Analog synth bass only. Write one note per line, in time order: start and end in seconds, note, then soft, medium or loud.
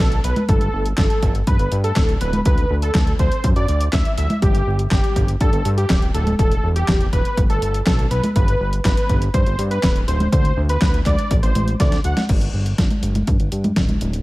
0.00 0.20 B1 medium
0.24 0.34 B1 medium
0.49 0.69 G1 loud
0.73 0.93 G1 medium
0.98 1.08 G1 loud
1.23 1.43 G1 loud
1.47 1.57 G2 medium
1.59 1.69 G1 medium
1.72 1.92 G2 loud
1.96 2.16 D1 medium
2.21 2.41 D1 loud
2.46 2.66 D2 medium
2.70 2.90 D2 loud
2.95 3.15 D2 medium
3.19 3.29 D2 loud
3.44 3.54 F#2 medium
3.56 3.66 F#2 loud
3.69 3.89 D2 medium
3.93 4.03 D2 loud
4.18 4.28 D2 medium
4.42 4.62 G1 loud
4.67 4.87 G1 medium
4.92 5.01 G1 loud
5.16 5.36 G1 loud
5.41 5.51 G2 medium
5.53 5.63 G1 medium
5.65 5.85 G2 loud
5.90 6.10 D1 medium
6.14 6.34 D1 loud
6.39 6.59 E1 medium
6.63 6.84 E1 loud
6.88 7.08 E1 medium
7.13 7.23 E1 loud
7.37 7.47 G1 medium
7.49 7.60 G1 loud
7.62 7.82 G1 medium
7.86 8.07 B1 loud
8.11 8.21 B1 medium
8.36 8.56 G1 loud
8.60 8.80 G1 medium
8.85 8.95 G1 loud
9.09 9.29 G1 loud
9.34 9.44 G2 medium
9.46 9.56 G1 medium
9.59 9.79 G2 loud
9.83 10.03 D1 medium
10.08 10.28 D1 loud
10.32 10.52 D2 medium
10.57 10.77 D2 loud
10.82 11.02 D2 medium
11.06 11.16 D2 loud
11.31 11.41 A1 medium
11.43 11.53 A1 medium
11.55 11.75 A1 medium
11.80 12.00 D2 loud
12.05 12.15 D2 medium
12.29 12.49 G1 loud
12.54 12.74 G1 medium
12.78 12.88 G1 medium
13.03 13.23 G1 loud
13.27 13.38 G2 medium
13.40 13.50 G1 medium
13.52 13.72 G2 medium
13.77 13.97 D1 medium
14.01 14.21 D1 loud